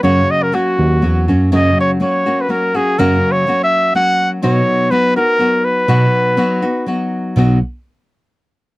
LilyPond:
<<
  \new Staff \with { instrumentName = "Trumpet" } { \time 3/4 \key b \major \tempo 4 = 123 cis''8 dis''16 ais'16 fis'4. r8 | dis''8 cis''8 cis''8. b'16 ais'8 gis'8 | \tuplet 3/2 { ais'4 cis''8~ cis''8 e''4 } fis''8. r16 | cis''4 b'8 ais'4 b'8~ |
b'2 r4 | r2. | }
  \new Staff \with { instrumentName = "Nylon-string guitar" } { \time 3/4 \key b \major <fis, cis fis ais cis' fis'>4 <fis ais cis' fis'>4 <fis ais cis' fis'>8 <fis ais cis' fis'>8 | <fis, cis fis ais cis' fis'>4 <fis ais cis' fis'>8 <fis ais cis' fis'>8 <fis ais cis' fis'>8 <fis ais cis' fis'>8 | <fis, cis fis ais cis' fis'>4 <fis ais cis' fis'>4 <fis ais cis' fis'>4 | <b, fis b dis' fis'>4 <fis b dis' fis'>8 <b dis' fis'>8 <fis b dis' fis'>4 |
<b, fis b dis' fis'>4 <fis b dis' fis'>8 <b dis' fis'>8 <fis b dis' fis'>4 | <b, fis b dis' fis'>8 r2 r8 | }
  \new Staff \with { instrumentName = "Tine electric piano" } { \clef bass \time 3/4 \key b \major fis,8 r4 dis,8 e,8 fis,8 | fis,8 r2 r8 | fis,8 r2 r8 | b,8 r2 r8 |
b,8 r2 r8 | b,,8 r2 r8 | }
>>